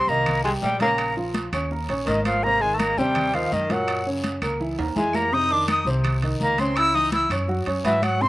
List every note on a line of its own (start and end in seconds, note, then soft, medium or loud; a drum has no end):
0.00 0.10 C4 medium
0.00 0.10 C6 medium
0.07 0.58 C2 medium
0.07 0.39 D#3 medium
0.07 0.43 A#3 medium
0.07 0.39 D#4 medium
0.07 0.39 D#5 medium
0.07 0.43 A#5 medium
0.07 high conga soft
0.07 short guiro medium
0.26 high conga soft
0.26 low conga medium
0.26 high timbale medium
0.26 long guiro medium
0.26 claves medium
0.44 0.74 G3 medium
0.44 0.52 G#3 medium
0.44 0.74 G4 medium
0.44 0.74 G5 medium
0.44 0.50 G#5 medium
0.44 high conga soft
0.44 low conga medium
0.44 high timbale medium
0.62 1.47 A#1 medium
0.62 0.79 G3 medium
0.62 0.79 G5 medium
0.62 high conga medium
0.62 low timbale medium
0.62 short guiro medium
0.80 1.10 C#3 medium
0.80 1.15 A#3 medium
0.80 1.11 C#4 medium
0.80 1.11 C#5 medium
0.80 1.15 A#5 medium
0.80 high conga medium
0.80 high timbale medium
0.80 short guiro medium
0.98 high conga soft
0.98 high timbale medium
0.98 long guiro medium
0.98 claves medium
1.16 1.47 F3 medium
1.16 1.47 F4 medium
1.16 1.47 F5 medium
1.16 high conga soft
1.34 high conga medium
1.34 high timbale medium
1.34 short guiro medium
1.52 1.86 D#2 medium
1.52 1.68 C#4 medium
1.52 1.68 C#5 medium
1.52 1.68 C#6 medium
1.52 high conga soft
1.52 high timbale medium
1.52 short guiro medium
1.52 claves medium
1.71 1.86 A#3 medium
1.71 1.86 A#4 medium
1.71 1.86 A#5 medium
1.71 high conga soft
1.71 long guiro medium
1.89 2.06 A#1 medium
1.89 2.04 C#4 medium
1.89 2.04 C#5 medium
1.89 2.04 C#6 medium
1.89 high conga soft
1.89 high timbale medium
2.06 2.91 G#1 medium
2.06 2.23 D#3 medium
2.06 2.37 A#3 medium
2.06 2.37 A#4 medium
2.06 2.24 D#5 medium
2.06 2.37 A#5 medium
2.06 high conga medium
2.06 high timbale medium
2.06 short guiro medium
2.25 2.45 F3 medium
2.25 2.45 F5 medium
2.25 high conga medium
2.25 high timbale medium
2.25 short guiro medium
2.25 claves medium
2.43 2.59 C3 medium
2.43 2.62 A#3 medium
2.43 2.59 C4 medium
2.43 2.59 C5 medium
2.43 2.63 A#5 loud
2.43 high conga soft
2.43 long guiro medium
2.60 2.91 D#3 medium
2.60 2.76 G#3 medium
2.60 2.91 D#4 medium
2.60 2.92 D#5 medium
2.60 2.75 G#5 medium
2.60 high conga soft
2.74 2.81 A3 medium
2.74 2.80 A5 medium
2.78 2.99 A#3 medium
2.78 3.00 A#5 medium
2.78 high conga medium
2.78 high timbale medium
2.78 short guiro medium
2.78 claves medium
2.97 3.48 D#2 medium
2.97 3.28 C3 medium
2.97 3.37 G3 medium
2.97 3.28 C4 medium
2.97 3.28 C5 medium
2.97 3.36 G5 loud
2.97 high conga soft
2.97 short guiro medium
3.15 high conga soft
3.15 low conga medium
3.15 high timbale medium
3.15 long guiro medium
3.15 claves medium
3.34 3.63 D#3 medium
3.34 3.54 F3 medium
3.34 3.64 D#4 medium
3.34 3.64 D#5 medium
3.34 3.55 F5 medium
3.34 high conga soft
3.34 low conga medium
3.34 high timbale medium
3.52 4.36 F#2 medium
3.52 3.73 D#3 medium
3.52 3.74 D#5 medium
3.52 high conga medium
3.52 short guiro medium
3.69 3.99 A#2 medium
3.69 4.07 F#3 medium
3.69 4.00 A#3 medium
3.69 4.00 A#4 medium
3.69 4.07 F#5 medium
3.69 high conga medium
3.69 high timbale medium
3.69 short guiro medium
3.88 high conga soft
3.88 high timbale medium
3.88 long guiro medium
3.88 claves medium
4.06 4.36 C#3 medium
4.06 4.36 C#4 medium
4.06 4.36 C#5 medium
4.06 high conga soft
4.24 high conga medium
4.24 high timbale medium
4.24 short guiro medium
4.42 4.76 C#2 medium
4.42 4.57 A#3 medium
4.42 4.57 A#4 medium
4.42 4.57 A#5 medium
4.42 high conga soft
4.42 high timbale medium
4.42 short guiro medium
4.42 claves medium
4.60 4.75 E3 medium
4.60 4.75 E4 medium
4.60 4.75 E5 medium
4.60 high conga soft
4.60 long guiro medium
4.78 4.95 D#2 medium
4.78 4.93 A#3 medium
4.78 4.93 A#4 medium
4.78 4.94 A#5 medium
4.78 high conga soft
4.78 high timbale medium
4.96 5.81 F2 medium
4.96 5.26 E3 medium
4.96 5.16 G#3 medium
4.96 5.26 E4 medium
4.96 5.26 E5 medium
4.96 5.17 G#5 medium
4.96 high conga medium
4.96 short guiro medium
5.13 5.34 A#3 medium
5.13 5.35 A#5 medium
5.13 high conga medium
5.13 low timbale medium
5.13 short guiro medium
5.13 claves medium
5.32 5.47 C3 medium
5.32 5.47 C4 medium
5.32 5.53 D#4 medium
5.32 5.48 C5 medium
5.32 5.54 D#6 loud
5.32 high conga soft
5.32 long guiro medium
5.50 5.80 D#3 medium
5.50 5.68 D4 medium
5.50 5.80 D#4 medium
5.50 5.81 D#5 medium
5.50 5.69 D6 medium
5.50 high conga soft
5.68 5.86 D#4 medium
5.68 5.86 D#6 medium
5.68 high conga medium
5.68 high timbale medium
5.68 short guiro medium
5.68 claves medium
5.85 6.36 C2 medium
5.85 6.16 C3 medium
5.85 6.16 C4 medium
5.85 6.16 C5 medium
5.85 high conga soft
5.85 short guiro medium
6.04 high conga soft
6.04 low conga medium
6.04 high timbale medium
6.04 long guiro medium
6.04 claves medium
6.22 6.53 D#3 medium
6.22 6.53 D#4 medium
6.22 6.53 D#5 medium
6.22 high conga soft
6.22 low conga medium
6.22 high timbale medium
6.40 7.25 C#2 medium
6.40 6.62 A#3 medium
6.40 6.61 A#5 medium
6.40 high conga medium
6.40 short guiro medium
6.58 6.89 C#3 medium
6.58 6.79 C4 medium
6.58 6.89 C#4 medium
6.58 6.89 C#5 medium
6.58 6.78 C6 medium
6.58 high conga medium
6.58 high timbale medium
6.58 short guiro medium
6.76 6.96 E4 medium
6.76 6.96 E6 loud
6.76 high conga soft
6.76 high timbale loud
6.76 long guiro medium
6.76 claves medium
6.95 7.24 E3 medium
6.95 7.12 D#4 medium
6.95 7.25 E4 medium
6.95 7.25 E5 medium
6.95 7.13 D#6 loud
6.95 high conga soft
7.12 7.30 E4 medium
7.12 7.30 E6 medium
7.12 high conga loud
7.12 high timbale medium
7.12 short guiro medium
7.30 7.64 F#2 loud
7.30 7.46 C#4 medium
7.30 7.46 C#5 medium
7.30 7.46 C#6 medium
7.30 high conga soft
7.30 high timbale medium
7.30 short guiro medium
7.30 claves medium
7.48 7.63 F#3 medium
7.48 7.64 F#4 medium
7.48 7.64 F#5 medium
7.48 high conga soft
7.48 long guiro medium
7.66 7.84 F#2 medium
7.66 7.82 C#4 medium
7.66 7.82 C#5 medium
7.66 7.82 C#6 medium
7.66 high conga soft
7.66 high timbale medium
7.84 8.29 G#2 medium
7.84 8.04 E3 medium
7.84 8.15 F#3 medium
7.84 8.15 F#4 medium
7.84 8.05 E5 medium
7.84 8.15 F#5 medium
7.84 high conga medium
7.84 high timbale medium
7.84 short guiro medium
8.02 8.23 F#3 medium
8.02 8.23 F#5 loud
8.02 high conga medium
8.02 high timbale medium
8.02 short guiro medium
8.02 claves medium
8.21 8.29 C3 medium
8.21 8.29 C4 medium
8.21 8.29 C4 loud
8.21 8.29 C5 medium
8.21 8.29 C6 loud
8.21 high conga soft
8.21 long guiro medium